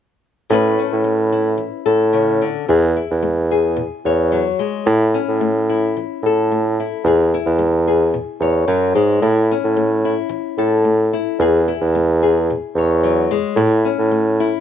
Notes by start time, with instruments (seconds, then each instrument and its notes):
0.50 nylon-string guitar A2 A3 C#4 E4 B4, bassoon A2
0.79 nylon-string guitar C#4
0.93 bassoon A2
1.04 nylon-string guitar A3
1.32 nylon-string guitar E4
1.58 nylon-string guitar E3
1.86 bassoon A2, nylon-string guitar A4
2.13 nylon-string guitar C#3
2.42 nylon-string guitar D3
2.68 bassoon E2, nylon-string guitar E3 G#4
2.97 nylon-string guitar E4
3.11 bassoon E2
3.22 nylon-string guitar G#3
3.51 nylon-string guitar G#4
3.77 nylon-string guitar B2
4.05 bassoon E2, nylon-string guitar C#5
4.32 nylon-string guitar F#3
4.59 nylon-string guitar G#3
4.86 bassoon A2, nylon-string guitar A2 E4
5.14 nylon-string guitar C#4
5.28 bassoon A2
5.41 nylon-string guitar A3
5.69 nylon-string guitar E4
5.97 nylon-string guitar E3
6.23 bassoon A2, nylon-string guitar A4
6.52 nylon-string guitar A3
6.80 nylon-string guitar E4
7.04 bassoon E2, nylon-string guitar E3 G#4
7.34 nylon-string guitar E4
7.46 bassoon E2
7.59 nylon-string guitar G#3
7.88 nylon-string guitar G#4
8.14 nylon-string guitar B2
8.40 bassoon E2, nylon-string guitar C#5
8.68 bassoon F#2, nylon-string guitar F#3
8.95 bassoon G#2, nylon-string guitar G#3
9.22 bassoon A2, nylon-string guitar A2 E4
9.51 nylon-string guitar C#4
9.64 bassoon A2
9.77 nylon-string guitar A3
10.05 nylon-string guitar E4
10.29 nylon-string guitar E3
10.58 bassoon A2, nylon-string guitar A4
10.85 nylon-string guitar A3
11.13 nylon-string guitar E4
11.39 bassoon E2, nylon-string guitar E3 G#4
11.68 nylon-string guitar E4
11.81 bassoon E2
11.95 nylon-string guitar G#3
12.23 nylon-string guitar G#4
12.50 nylon-string guitar B2
12.75 bassoon E2, nylon-string guitar C#5
13.03 nylon-string guitar F#3
13.31 nylon-string guitar G#3
13.56 bassoon A2, nylon-string guitar A2 E4
13.85 nylon-string guitar C#4
13.99 bassoon A2
14.11 nylon-string guitar A3
14.40 nylon-string guitar E4